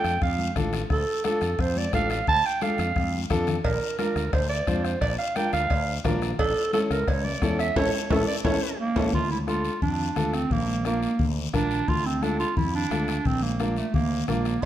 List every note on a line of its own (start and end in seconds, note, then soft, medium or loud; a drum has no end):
0.00 0.11 D4 medium
0.00 0.12 F4 medium
0.00 0.12 A4 medium
0.00 0.22 G5 loud
0.04 0.18 F2 medium
0.04 bombo rim medium
0.04 short guiro medium
0.22 0.49 F2 loud
0.22 0.54 F5 medium
0.22 bombo low medium
0.22 bombo rim medium
0.22 long guiro medium
0.39 high conga medium
0.56 0.84 A1 medium
0.56 0.80 D4 medium
0.56 0.80 F4 medium
0.56 0.80 A4 medium
0.56 bombo low medium
0.56 bombo rim medium
0.56 high conga medium
0.56 low conga medium
0.56 short guiro medium
0.73 bombo rim medium
0.73 short guiro medium
0.90 1.04 D2 loud
0.90 1.23 A4 loud
0.90 bombo low medium
0.90 bombo rim medium
0.90 long guiro medium
1.24 1.49 D4 medium
1.24 1.49 F4 medium
1.24 1.49 A4 medium
1.24 1.62 A4 medium
1.24 bombo rim medium
1.24 high conga medium
1.24 short guiro medium
1.41 1.55 F2 medium
1.41 bombo rim medium
1.41 short guiro medium
1.59 1.86 F2 loud
1.59 1.79 C5 medium
1.59 bombo low medium
1.59 bombo rim medium
1.59 long guiro medium
1.76 1.94 D5 medium
1.76 high conga medium
1.93 2.21 A1 medium
1.93 2.17 D4 medium
1.93 2.17 F4 medium
1.93 2.18 A4 medium
1.93 2.10 F5 loud
1.93 bombo low medium
1.93 bombo rim medium
1.93 high conga medium
1.93 short guiro medium
2.10 2.27 F5 medium
2.10 bombo rim medium
2.10 short guiro medium
2.27 2.41 D2 loud
2.27 2.47 A5 loud
2.27 bombo low medium
2.27 bombo rim medium
2.27 long guiro medium
2.46 2.64 G5 loud
2.61 2.86 D4 medium
2.61 2.86 F4 medium
2.61 2.86 A4 medium
2.61 3.31 F5 medium
2.61 bombo rim medium
2.61 high conga medium
2.61 short guiro medium
2.78 2.92 F2 medium
2.78 bombo rim medium
2.78 short guiro medium
2.96 3.24 F2 loud
2.96 bombo low medium
2.96 bombo rim medium
2.96 high conga medium
2.96 long guiro medium
3.13 high conga medium
3.30 3.58 F2 medium
3.30 3.54 D4 medium
3.30 3.54 F4 medium
3.30 3.55 A4 loud
3.30 bombo low medium
3.30 bombo rim medium
3.30 low conga medium
3.30 short guiro medium
3.47 bombo rim medium
3.47 low conga medium
3.47 short guiro medium
3.64 3.78 A#1 loud
3.64 3.97 A#4 medium
3.64 bombo low medium
3.64 bombo rim medium
3.64 cowbell loud
3.64 long guiro medium
3.99 4.23 D4 medium
3.99 4.23 F4 medium
3.99 4.31 A#4 medium
3.99 4.23 A#4 medium
3.99 bombo rim medium
3.99 high conga medium
3.99 short guiro medium
4.16 4.30 D2 medium
4.16 bombo rim medium
4.16 short guiro medium
4.33 4.61 D2 loud
4.33 4.49 C5 medium
4.33 bombo low medium
4.33 bombo rim medium
4.33 cowbell medium
4.33 long guiro medium
4.49 4.85 D5 loud
4.67 4.95 F2 medium
4.67 4.91 D4 medium
4.67 4.92 F4 medium
4.67 4.92 C5 medium
4.67 bombo low medium
4.67 bombo rim medium
4.67 high conga medium
4.67 short guiro medium
4.84 5.00 C5 medium
4.84 bombo rim medium
4.84 short guiro medium
5.01 5.15 A#1 loud
5.01 5.17 D5 loud
5.01 bombo low medium
5.01 bombo rim medium
5.01 cowbell loud
5.01 long guiro medium
5.18 5.37 F5 loud
5.36 5.60 D4 medium
5.36 5.60 F4 medium
5.36 5.60 A#4 medium
5.36 5.52 G5 loud
5.36 bombo rim medium
5.36 high conga medium
5.36 short guiro medium
5.53 5.67 D2 medium
5.53 6.01 F5 loud
5.53 bombo rim medium
5.53 short guiro medium
5.70 5.98 D2 medium
5.70 bombo low medium
5.70 bombo rim medium
5.70 cowbell medium
5.70 long guiro medium
6.04 6.32 A#1 loud
6.04 6.29 D4 medium
6.04 6.29 F4 medium
6.04 6.29 A#4 loud
6.04 bombo low medium
6.04 bombo rim medium
6.04 high conga loud
6.04 low conga medium
6.04 low timbale medium
6.04 short guiro medium
6.22 bombo rim medium
6.22 short guiro medium
6.39 6.53 A1 loud
6.39 6.71 A4 loud
6.39 bombo low medium
6.39 bombo rim medium
6.39 cowbell loud
6.39 long guiro medium
6.73 6.97 C#4 medium
6.73 6.97 E4 medium
6.73 6.81 A4 medium
6.73 6.98 A4 medium
6.73 bombo rim medium
6.73 high conga loud
6.73 short guiro medium
6.91 7.04 C#2 medium
6.91 7.10 A#4 medium
6.91 bombo rim medium
6.91 short guiro medium
7.08 7.35 C#2 loud
7.08 7.26 C#5 loud
7.08 bombo low medium
7.08 bombo rim medium
7.08 cowbell medium
7.08 long guiro medium
7.25 7.59 D5 loud
7.25 high conga medium
7.42 7.69 E2 loud
7.42 7.66 C#4 medium
7.42 7.66 E4 medium
7.42 7.66 A4 medium
7.42 bombo low medium
7.42 bombo rim medium
7.42 high conga medium
7.42 short guiro medium
7.59 7.75 E5 loud
7.59 bombo rim medium
7.59 short guiro medium
7.76 7.89 A1 medium
7.76 7.87 C#4 loud
7.76 7.87 E4 loud
7.76 7.87 A4 loud
7.76 8.13 C#5 loud
7.76 bombo low medium
7.76 high conga loud
7.76 high timbale loud
7.76 long guiro loud
8.10 8.23 A1 loud
8.10 8.22 C#4 medium
8.10 8.22 E4 medium
8.10 8.22 A4 medium
8.10 8.27 A4 loud
8.10 bombo low medium
8.10 high conga loud
8.10 high timbale loud
8.10 long guiro loud
8.28 8.36 D5 loud
8.44 8.57 A1 loud
8.44 8.56 C#4 loud
8.44 8.56 E4 loud
8.44 8.56 A4 loud
8.44 8.77 C#5 medium
8.44 bombo low loud
8.44 high conga loud
8.44 high timbale loud
8.44 long guiro loud
8.79 9.11 A#3 loud
8.96 9.09 A1 loud
8.96 9.07 C#4 loud
8.96 9.07 E4 loud
8.96 9.07 A4 medium
8.96 bombo low loud
8.96 high conga loud
8.96 high timbale medium
8.96 long guiro loud
9.13 9.68 D2 medium
9.13 9.30 F4 loud
9.13 bombo low medium
9.13 low conga medium
9.13 long guiro medium
9.31 9.39 E4 medium
9.31 high conga medium
9.47 9.71 D4 medium
9.47 9.71 F4 medium
9.47 9.80 F4 loud
9.47 9.72 A4 medium
9.47 bombo rim medium
9.47 high conga medium
9.47 short guiro medium
9.64 short guiro medium
9.82 10.09 F2 medium
9.82 10.36 D4 medium
9.82 bombo low medium
9.82 low conga medium
9.82 long guiro medium
10.16 10.44 D2 medium
10.16 10.40 D4 medium
10.16 10.40 F4 medium
10.16 10.41 A4 medium
10.16 bombo rim medium
10.16 high conga medium
10.16 low conga medium
10.16 short guiro medium
10.33 10.53 C4 medium
10.33 bombo rim medium
10.33 short guiro medium
10.50 11.05 A#1 loud
10.50 10.85 A#3 loud
10.50 bombo low medium
10.50 low conga medium
10.50 long guiro medium
10.68 high conga medium
10.85 11.33 A#3 medium
10.85 11.09 D4 medium
10.85 11.09 F4 medium
10.85 11.10 A#4 medium
10.85 bombo rim medium
10.85 high conga medium
10.85 short guiro medium
11.03 short guiro medium
11.19 11.47 D2 medium
11.19 bombo low medium
11.19 low conga medium
11.19 long guiro medium
11.53 11.81 A#1 medium
11.53 11.78 D4 medium
11.53 11.90 D4 loud
11.53 11.78 F4 medium
11.53 11.78 A#4 medium
11.53 bombo low medium
11.53 bombo rim medium
11.53 high conga medium
11.53 low conga medium
11.53 short guiro medium
11.71 short guiro medium
11.88 12.43 D2 loud
11.88 12.07 F4 loud
11.88 bombo low medium
11.88 low conga medium
11.88 long guiro medium
12.06 12.24 C4 medium
12.22 12.46 D4 medium
12.22 12.39 D4 medium
12.22 12.47 F4 medium
12.22 12.47 A4 medium
12.22 bombo rim medium
12.22 high conga medium
12.22 short guiro medium
12.40 12.56 F4 loud
12.40 short guiro medium
12.57 12.84 F2 medium
12.57 12.73 E4 medium
12.57 bombo low medium
12.57 low conga medium
12.57 long guiro medium
12.75 13.28 D4 loud
12.91 13.18 D2 medium
12.91 13.15 D4 medium
12.91 13.15 F4 medium
12.91 13.15 A4 medium
12.91 bombo rim medium
12.91 high conga medium
12.91 low conga medium
12.91 short guiro medium
13.08 bombo rim medium
13.08 short guiro medium
13.25 13.80 A#1 medium
13.25 13.44 C4 loud
13.25 bombo low medium
13.25 low conga medium
13.25 long guiro medium
13.42 13.79 A#3 medium
13.42 high conga medium
13.60 13.84 D4 medium
13.60 13.84 F4 medium
13.60 13.84 A#4 medium
13.60 bombo rim medium
13.60 high conga medium
13.60 short guiro medium
13.77 13.94 A3 medium
13.77 short guiro medium
13.94 14.21 D2 medium
13.94 14.26 A#3 medium
13.94 bombo low medium
13.94 low conga medium
13.94 long guiro medium
14.28 14.56 A#1 medium
14.28 14.64 A#3 medium
14.28 14.52 D4 medium
14.28 14.52 F4 medium
14.28 14.53 A#4 medium
14.28 bombo rim medium
14.28 high conga medium
14.28 low conga medium
14.28 short guiro medium
14.45 bombo rim medium
14.45 short guiro medium